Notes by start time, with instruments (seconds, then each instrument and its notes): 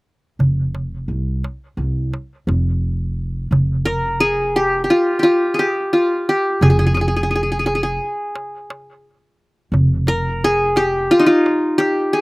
0.39 upright bass F1, darbuka dum
0.75 darbuka tek
1.08 upright bass C2
1.44 darbuka tek
1.77 upright bass C2
2.14 darbuka tek
2.47 upright bass F1, darbuka tek
3.51 upright bass F1, darbuka dum
3.85 qanun A#4, darbuka tek
4.20 qanun G#4
4.56 qanun G4
4.84 qanun G4
4.90 qanun F4
5.19 qanun F4 G4
5.25 darbuka tek
5.54 qanun G#4
5.59 qanun G4, darbuka tek
5.93 qanun F4
6.29 qanun G4
6.61 upright bass F1, qanun G#4, darbuka dum
6.70 qanun G#4
6.79 qanun G#4
6.87 qanun G#4
6.94 qanun G#4, darbuka tek
7.01 qanun G#4
7.08 qanun G#4
7.16 qanun G#4
7.23 qanun G#4
7.31 qanun G#4, darbuka ka
7.35 qanun G#4
7.43 qanun G#4
7.52 qanun G#4
7.59 qanun G#4
7.66 qanun G#4, darbuka tek
7.75 qanun G#4
7.83 qanun G#4
8.01 darbuka ka
8.36 darbuka tek
8.70 darbuka tek
9.72 upright bass F1, darbuka dum
10.07 qanun A#4, darbuka tek
10.42 qanun G#4, darbuka ka
10.76 qanun G4, darbuka tek
11.11 qanun F4, darbuka ka
11.19 qanun D#4
11.26 qanun F4
11.46 darbuka tek
11.78 qanun G4, darbuka tek
12.13 qanun G#4